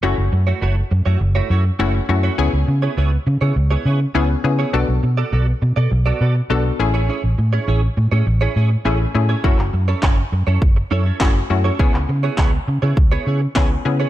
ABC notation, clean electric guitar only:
X:1
M:4/4
L:1/16
Q:1/4=102
K:F#m
V:1 name="Clean electric guitar"
[A,EFc] z2 [A,EFc] [A,EFc] z2 [A,EFc] z [A,EFc] [A,EFc] z [A,EFc] z2 [A,EFc] | [B,EGc] z2 [B,EGc] [B,EGc] z2 [B,EGc] z [B,EGc] [B,EGc] z [B,EGc] z2 [B,EGc] | [B,FAd] z2 [B,FAd] [B,FAd] z2 [B,FAd] z [B,FAd] [B,FAd] z [B,FAd] z2 [CEGc] | [CEGc] z2 [CEGc] [CEGc] z2 [CEGc] z [CEGc] [CEGc] z [CEGc] z2 [CEGc] |
[CEAc] z2 [CEAc] [CEAc] z2 [CEAc] z2 [CEAc] [CEAc] [CEAc] z2 [CEAc] | [B,EGc] z2 [B,EGc] [B,EGc] z2 [B,EGc] z [B,EGc] [B,EGc] z [B,EGc] z2 [B,EGc] |]